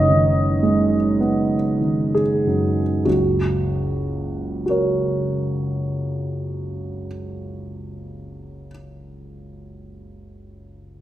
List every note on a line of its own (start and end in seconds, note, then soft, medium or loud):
0.00 3.02 F#1 soft
0.00 2.47 F#2 soft
0.00 0.09 D#3 soft
0.00 1.20 B3 soft
0.00 3.08 C#5 medium
0.00 2.14 D#5 medium
0.09 0.96 D#3 soft
0.63 1.56 G#3 soft
1.20 2.21 B3 soft
1.81 2.83 D#3 soft
2.15 3.05 G#4 soft
2.47 3.05 F#2 soft
3.05 7.07 F#1 soft
3.05 7.06 C#2 soft
3.05 4.64 F#4 soft
4.66 8.66 F#4 soft
4.66 8.69 A#4 soft
4.70 8.70 C#5 soft